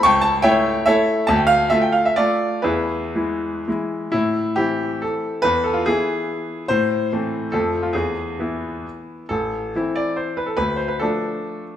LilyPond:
<<
  \new Staff \with { instrumentName = "Grand piano" } { \time 3/4 \key a \minor \tempo 4 = 140 <g'' a'' cis'''>8 a''8 <cis'' e'' g''>4 <a' cis'' e''>4 | a''16 g''16 f''8 e''16 g''16 f''16 e''16 <f' a' d''>4 | <e' gis' b'>2 r4 | e'4 g'4 a'4 |
b'8 a'16 f'16 gis'2 | c''2 a'8. f'16 | gis'2 r4 | a'4. d''8 c''8 b'16 a'16 |
b'8 c''16 b'16 a'4. r8 | }
  \new Staff \with { instrumentName = "Grand piano" } { \time 3/4 \key a \minor cis,4 <a e'>4 <a e'>4 | d,4 <a f'>4 a4 | e,4 <e gis e'>4 <e gis e'>4 | a,4 <e c' e'>2 |
e,4 <e b e'>2 | a,4 <e a c'>4 <f, f a c'>4 | e,4 <e b e'>2 | a,,4 <e c' e'>2 |
d,4 <f a d'>2 | }
>>